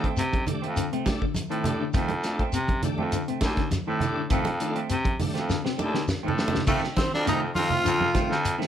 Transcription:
Already playing: clean electric guitar D#3
0.04 clean electric guitar A3 C4, kick, closed hi-hat
0.17 clean electric guitar C3, baritone saxophone C3, closed hi-hat, high conga, shekere
0.33 kick, closed hi-hat, high conga
0.46 baritone saxophone F2, clean electric guitar D#3, tonewheel organ A3 D4 G4, closed hi-hat, low conga, shekere
0.62 baritone saxophone F2, clean electric guitar A3 C4, closed hi-hat
0.76 clean electric guitar D3, closed hi-hat, high conga, shekere
0.92 clean electric guitar C3 A3 C4, closed hi-hat
1.05 tonewheel organ A3 D4 G4, kick, snare, closed hi-hat, high conga, shekere
1.21 clean electric guitar D3, kick
1.35 closed hi-hat, high conga, shekere
1.50 baritone saxophone A2, clean electric guitar D#3 A3 C4, closed hi-hat
1.64 tonewheel organ A3 D4 G4, closed hi-hat, low conga, shekere
1.80 clean electric guitar D3
1.93 baritone saxophone F2, clean electric guitar C3 D#3 A3 C4, kick, snare, closed hi-hat, high conga, shekere
2.09 closed hi-hat, high conga
2.23 tonewheel organ A3 D4 F4, snare, closed hi-hat, shekere
2.39 clean electric guitar A3 C4, kick, closed hi-hat
2.53 clean electric guitar C3, baritone saxophone C3, closed hi-hat, high conga, shekere
2.68 kick, closed hi-hat, high conga
2.83 baritone saxophone F2, clean electric guitar D#3, tonewheel organ A3 D4 G4, closed hi-hat, low conga, shekere
2.98 baritone saxophone F2, clean electric guitar A3 C4, high conga
3.12 clean electric guitar D3, closed hi-hat, high conga, shekere
3.28 clean electric guitar C3 A3 C4, closed hi-hat
3.41 baritone saxophone D#2, tonewheel organ A3 D4 G4, kick, snare, closed hi-hat, high conga, shekere
3.57 clean electric guitar D3, kick, snare, closed hi-hat
3.71 snare, closed hi-hat, high conga, shekere
3.87 baritone saxophone A2, clean electric guitar D#3 A3 C4
4.00 tonewheel organ A3 D4 G4, closed hi-hat, low conga, shekere
4.16 clean electric guitar D3
4.30 baritone saxophone F2, clean electric guitar C3 D#3 A3 C4, kick, closed hi-hat, high conga, shekere
4.45 closed hi-hat, high conga
4.60 clean electric guitar D#3, tonewheel organ A3 D4 F4, closed hi-hat, shekere
4.75 clean electric guitar A3 C4, closed hi-hat
4.89 clean electric guitar C3, baritone saxophone C3, closed hi-hat, high conga, shekere
5.05 kick, closed hi-hat, high conga
5.19 baritone saxophone F2, clean electric guitar D#3, tonewheel organ A3 D4 G4, open hi-hat, high conga, low conga, shekere
5.34 baritone saxophone F2, clean electric guitar A3 C4, snare, closed hi-hat
5.49 clean electric guitar D3, snare, high conga, shekere
5.64 clean electric guitar C3 C4, muted clean electric guitar stroke, snare
5.77 baritone saxophone D#2, tonewheel organ A3 D4 G4, high conga, shekere
5.93 clean electric guitar D3, snare
6.08 snare, high conga, shekere
6.23 baritone saxophone A2, clean electric guitar D#3 A3 C4
6.28 low conga
6.38 tonewheel organ A3 D4 G4, snare, shekere
6.48 low conga
6.52 clean electric guitar D3, snare
6.57 low conga
6.66 baritone saxophone F2, clean electric guitar C3 D#3 A3 C4, tenor saxophone A3, trumpet A3, kick, crash, low conga, shekere
6.84 snare
6.97 clean electric guitar D#3, tenor saxophone C4, trumpet C4, kick, snare, closed hi-hat, high conga, shekere
7.14 baritone saxophone F2, tenor saxophone D4, trumpet D4, snare
7.26 clean electric guitar C3 D#3 A3 C4, tenor saxophone D#4, trumpet D#4, snare, closed hi-hat, shekere
7.55 baritone saxophone F2, clean electric guitar D#3, tenor saxophone F4, trumpet F4, open hi-hat, high conga, shekere
7.70 clean electric guitar A3 C4, low conga
7.84 baritone saxophone F2, clean electric guitar D3, closed hi-hat, high conga, shekere
7.99 clean electric guitar C3, high conga
8.14 clean electric guitar D#3 A3 C4, kick, snare, closed hi-hat, high conga, shekere
8.29 baritone saxophone F2, clean electric guitar D3, snare
8.45 closed hi-hat, shekere
8.58 clean electric guitar D#3 A3 C4, snare

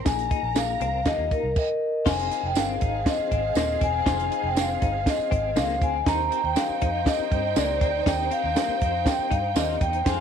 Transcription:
0.05 fingered electric bass A#1, reed electric piano A#3 D#4 F4 G#4, violin section A#4 A#5, vibraphone G#5, kick, snare, closed hi-hat, tambourine
0.19 closed hi-hat
0.31 clean electric guitar D#4, kick, closed hi-hat
0.43 fingered electric bass A#1
0.55 reed electric piano A#3 D#4 F4 G#4, vibraphone F5, snare, closed hi-hat, tambourine
0.80 fingered electric bass C2, clean electric guitar C4, closed hi-hat
1.05 fingered electric bass D2, reed electric piano A#3 D#4 F4 G4, clean electric guitar A#3, vibraphone D#5, kick, snare, closed hi-hat, tambourine
1.18 fingered electric bass D#2
1.31 clean electric guitar D#4, vibraphone A#4, kick, closed hi-hat
1.43 fingered electric bass C2
1.56 vibraphone D#5, kick, crash
2.06 fingered electric bass F1, reed electric piano C4 D#4 F4 G#4 C5, violin section C4 G#4 F5, clean electric guitar F4, vibraphone G#5, kick, snare, crash, tambourine
2.19 closed hi-hat
2.31 clean electric guitar D#4, closed hi-hat
2.43 fingered electric bass F1, vibraphone G5
2.55 fingered electric bass G1, reed electric piano C4 D#4 F4 G#4 A#4, clean electric guitar C4, vibraphone F5, snare, closed hi-hat, tambourine
2.81 fingered electric bass G#1, clean electric guitar D#4, kick, closed hi-hat
3.06 reed electric piano C4 D#4 F4 G#4 C5, vibraphone D#5, kick, snare, closed hi-hat, tambourine
3.19 muted fingered electric bass stroke
3.31 fingered electric bass G#1, clean electric guitar C4, kick, closed hi-hat
3.55 fingered electric bass D#1, clean electric guitar A#3, reed electric piano C4 D#4 F4 G#4 C5, vibraphone D#5, snare, closed hi-hat, tambourine
3.69 snare
3.81 fingered electric bass E1, clean electric guitar C4, vibraphone G#5, kick, closed hi-hat
4.06 fingered electric bass F1, reed electric piano C4 D#4 F4 G#4 C5, clean electric guitar F4, kick, snare, closed hi-hat, tambourine
4.20 closed hi-hat
4.31 clean electric guitar D#4, closed hi-hat
4.43 fingered electric bass F1, vibraphone G5
4.55 reed electric piano C4 D#4 F4 G#4 C5, clean electric guitar C4, snare, closed hi-hat, tambourine
4.60 vibraphone F5
4.81 fingered electric bass G1, clean electric guitar D#4, kick, closed hi-hat
5.05 reed electric piano C4 D#4 F4 G#4 C5, vibraphone D#5, kick, snare, closed hi-hat, tambourine
5.19 muted fingered electric bass stroke
5.31 fingered electric bass G#1, clean electric guitar C4, kick, closed hi-hat
5.56 fingered electric bass C#2, clean electric guitar A#3, reed electric piano C4 D#4 F4 G#4 C5, vibraphone F5, snare, closed hi-hat, tambourine
5.69 snare
5.81 fingered electric bass D2, clean electric guitar C4, vibraphone G#5, kick, closed hi-hat
6.06 fingered electric bass D#2, reed electric piano C4 D#4 G4 A#4 C5, clean electric guitar D#4, violin section D#4 C5 G5, vibraphone A#5, kick, snare, closed hi-hat, tambourine
6.31 clean electric guitar C4, closed hi-hat
6.44 fingered electric bass D#2, vibraphone G5
6.55 reed electric piano C4 D#4 G4 A#4 C5, clean electric guitar C4, vibraphone F5, snare, closed hi-hat, tambourine
6.69 muted fingered electric bass stroke
6.81 fingered electric bass F2, clean electric guitar D#4, kick, closed hi-hat
7.05 reed electric piano C4 D#4 G4 A#4 D#5, vibraphone D#5, kick, snare, closed hi-hat, tambourine
7.19 muted fingered electric bass stroke
7.31 fingered electric bass G2, clean electric guitar C4, kick, closed hi-hat
7.56 fingered electric bass C#2, clean electric guitar A#3, reed electric piano C4 D#4 G4 A#4 C5, vibraphone D5, snare, closed hi-hat, tambourine
7.81 fingered electric bass D2, clean electric guitar C4, kick, closed hi-hat
8.06 fingered electric bass D#2, reed electric piano C4 D#4 G4 A#4 D#5, clean electric guitar D#4, vibraphone G5, kick, snare, closed hi-hat, tambourine
8.31 clean electric guitar C4, vibraphone F5, closed hi-hat
8.44 fingered electric bass D#2
8.55 clean electric guitar A#3, reed electric piano C4 D#4 G4 A#4 C5, snare, closed hi-hat, tambourine
8.68 muted fingered electric bass stroke
8.81 fingered electric bass F2, clean electric guitar C4, kick, closed hi-hat
9.05 reed electric piano C4 D#4 G4 A#4 C5, vibraphone G5, kick, snare, closed hi-hat, tambourine
9.19 muted fingered electric bass stroke
9.31 fingered electric bass G2, clean electric guitar D#4, vibraphone F5, kick, closed hi-hat
9.55 fingered electric bass D#2, reed electric piano C4 D#4 G4 A#4 D5, clean electric guitar F4, vibraphone D#5, snare, closed hi-hat, tambourine
9.68 snare
9.81 fingered electric bass E2, clean electric guitar D#4, vibraphone G5, kick, closed hi-hat
9.93 closed hi-hat
10.05 fingered electric bass F2, saxophone section G#3 F4 C5, reed electric piano C4 D#4 F4 G#4 C5, violin section C4 G#4 F5, clean electric guitar F4, vibraphone G#5, kick, snare, closed hi-hat, tambourine

